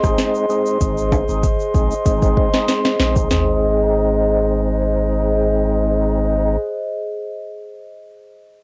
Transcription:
Already playing: G#4 C5 D#5 C6
0.03 G#1 G#3 C4 D#4, kick, cross-stick, shaker
0.18 snare, closed hi-hat, shaker
0.35 shaker
0.49 G#3 C4 D#4, shaker
0.66 shaker
0.80 G#1 G#3 C4 D#4, kick, closed hi-hat, shaker
0.97 shaker
1.12 kick, high timbale, shaker
1.28 G#1 G#3 C4 D#4, shaker
1.43 kick, closed hi-hat, shaker
1.60 shaker
1.74 A#1 G#3 C4 D#4, kick, shaker
1.91 shaker
2.05 G#1 G#3 C4 D#4, kick, closed hi-hat, shaker
2.22 kick, shaker
2.37 kick
2.53 G#3 C4 D#4, snare, shaker
2.68 snare, closed hi-hat, shaker
2.85 snare, shaker
2.99 A#1 G#3 C4 D#4, snare, shaker
3.16 kick, shaker
3.30 G#1 G#3 C4 D#4 G#4 C5 D#5, snare, floor tom, shaker

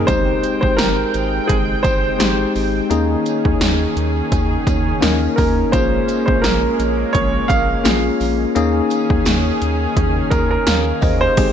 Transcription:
Already playing: A#3 D#4 G#4
0.07 G#1 G#3 C4 D#4 G4 C5 G5, kick, closed hi-hat, tambourine
0.43 closed hi-hat, tambourine
0.61 G#1 C5, kick
0.77 G#1 A#4, snare, closed hi-hat, tambourine
1.14 G#1, closed hi-hat, tambourine
1.47 G#1 G#4, kick, closed hi-hat
1.83 G#1 C5, kick, closed hi-hat, tambourine
2.19 G#1 G#3 C4 D#4 G4, snare, closed hi-hat, tambourine
2.55 G#1, open hi-hat, tambourine
2.90 D#2 D#3 A#3 C#4 D#4 G#4, closed hi-hat, tambourine
3.26 closed hi-hat, tambourine
3.45 D#2, kick
3.61 D#2, snare, closed hi-hat, tambourine
3.96 D#2, closed hi-hat
4.32 D#2, kick, closed hi-hat, tambourine
4.67 D#2, kick, closed hi-hat, tambourine
5.01 D#2 A#3 C#4 D#4 A#4, snare, closed hi-hat, tambourine
5.36 D#2 A#4, kick, open hi-hat, tambourine
5.72 A#1 G#3 A#3 C#4 F4 G#4 C5, kick, closed hi-hat, tambourine
6.08 closed hi-hat, tambourine
6.26 A#1 C5, kick
6.42 A#1 A#4, snare, closed hi-hat, tambourine
6.79 A#1, closed hi-hat, tambourine
7.13 A#1 C#5, kick, closed hi-hat
7.48 A#1 F5, kick, closed hi-hat, tambourine
7.84 A#1 A#3 C#4 F4 G#4, snare, closed hi-hat, tambourine
8.20 A#1, open hi-hat, tambourine
8.55 D#2 D#3 A#3 C#4 D#4 G#4, closed hi-hat, tambourine
8.90 closed hi-hat, tambourine
9.10 D#2, kick
9.25 D#2, snare, closed hi-hat, tambourine
9.62 D#2, closed hi-hat
9.97 D#2, kick, closed hi-hat
10.30 D#2 A#4, kick, closed hi-hat, tambourine
10.51 A#4
10.67 D#2 C#5 F5, snare, closed hi-hat, tambourine
11.01 D#2 C5 D#5, kick, open hi-hat, tambourine
11.21 G4 A#4 C5
11.37 G#1 C3 G#3 C4 D#4 G4 G#4 G5, kick, closed hi-hat, crash, tambourine

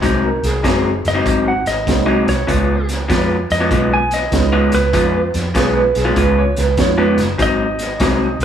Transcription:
Already playing: C5
0.02 C2 G#2 F#3 C4 D#4, kick, snare, closed hi-hat
0.24 A#4
0.43 C2 G#4, snare, closed hi-hat
0.63 F#1 G#2 F#3 C4 D#4, kick, snare, closed hi-hat
1.05 F#1 D#5, snare, closed hi-hat
1.14 G#2 F#3 C4 D#4
1.25 G#1 G#2 F#3 C4 D#4, kick, closed hi-hat
1.48 F#5
1.66 G#1 D#5, snare, closed hi-hat
1.86 C2 G#3 A#3 C4 D#4 F#4, kick, snare, closed hi-hat
2.06 G#2 F#3 C4 D#4
2.27 C2 C#5, snare, closed hi-hat
2.47 C#2 C#3 G#3 B3 F4, kick, closed hi-hat
2.89 snare, closed hi-hat
3.08 F2 C#3 G#3 B3 F4, kick, snare, closed hi-hat
3.50 F2 D#5, snare, closed hi-hat
3.60 C#3 G#3 B3 F4
3.71 B1 C#3 G#3 B3 F4, kick, closed hi-hat
3.94 G#5
4.11 D#5, snare, closed hi-hat
4.31 C#2 G#3 B3 C#4 D#4 F4, kick, snare, closed hi-hat
4.52 C#3 G#3 B3 F4
4.72 C#2 B4, snare, closed hi-hat
4.93 F2 C#3 G#3 B3 F4, kick, snare, closed hi-hat
5.34 F2, snare, closed hi-hat
5.55 B1 C#3 G#3 B3 F4 G#4, kick, snare, closed hi-hat
5.76 B4
5.95 B1 G#4, snare, closed hi-hat
6.05 C#3 G#3 B3 F4
6.16 C#2 C#3 G#3 B3 F4 B4, kick, closed hi-hat
6.38 C#5
6.56 C#2 B4, snare, closed hi-hat
6.77 F2 G#3 B3 C#4 D#4 F4 C#5, kick, snare, closed hi-hat
6.98 C#3 G#3 B3 F4
7.17 F#1, snare, closed hi-hat
7.38 G#1 G#2 F#3 C4 D#4, kick, snare, closed hi-hat
7.42 D#5
7.79 snare, closed hi-hat
8.00 C2 G#2 F#3 C4 D#4, kick, snare, closed hi-hat
8.39 C2, closed hi-hat

